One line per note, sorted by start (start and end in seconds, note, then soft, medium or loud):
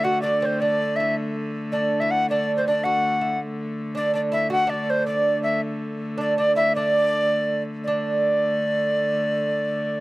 0.00 3.40 D3 medium
0.00 3.40 A3 medium
0.00 0.21 F#5 loud
0.04 0.23 F#4 medium
0.22 0.42 D4 medium
0.22 0.41 D5 medium
0.41 0.61 C4 medium
0.41 0.46 D5 medium
0.45 0.62 C5 medium
0.60 0.99 D4 medium
0.60 0.97 D5 medium
0.96 1.15 E5 medium
1.00 1.16 E4 medium
1.72 1.98 D4 medium
1.72 2.01 D5 medium
2.00 2.29 E4 medium
2.00 2.12 E5 loud
2.11 2.29 F#5 medium
2.29 2.58 D4 medium
2.29 2.55 D5 loud
2.57 2.66 C4 medium
2.57 2.65 C5 medium
2.67 2.85 D4 medium
2.67 2.85 D5 medium
2.84 3.21 F#4 medium
2.84 3.40 F#5 medium
3.21 3.38 E4 medium
3.40 7.85 D3 medium
3.40 7.85 A3 medium
3.95 4.12 D4 medium
3.95 4.13 D5 medium
4.14 4.31 D4 medium
4.14 4.21 D5 medium
4.32 4.49 E4 medium
4.32 4.50 E5 medium
4.50 4.67 F#4 medium
4.50 4.71 F#5 loud
4.67 5.05 D4 medium
4.67 4.91 D5 medium
4.90 5.06 C5 medium
5.07 5.58 D4 medium
5.07 5.41 D5 medium
5.43 5.61 E5 medium
6.18 6.37 D4 medium
6.18 6.37 D5 medium
6.38 6.56 D4 medium
6.38 6.55 D5 loud
6.56 6.75 E4 medium
6.56 6.73 E5 loud
6.75 7.63 D4 medium
6.75 7.63 D5 loud
7.84 10.00 D3 medium
7.84 10.00 A3 medium
7.84 10.00 D4 medium
7.84 10.00 D5 medium